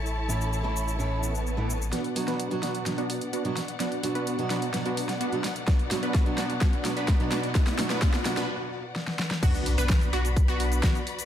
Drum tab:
CC |----------------|----------------|----------------|----------------|
HH |----------------|xxoxxxoxxxoxxxox|xxoxxxoxxxoxxxox|xxoxxxoxxxoxxxox|
SH |x-xxx-xxx-xxx-xx|----------------|----------------|----------------|
SD |----------------|o--o--o-o-----o-|o-----o-o--o--o-|o-o-o-o-o-o-o-o-|
BD |----------------|----------------|----------------|o---o---o---o---|

CC |----------------|x---------------|
HH |xxoxxxox--------|xxoxxxoxxxoxxxox|
SH |----------------|xx-xxx-xxx-xxx-x|
SD |oooooooo----oooo|----o-------o---|
BD |o---o-----------|o---o---o---o---|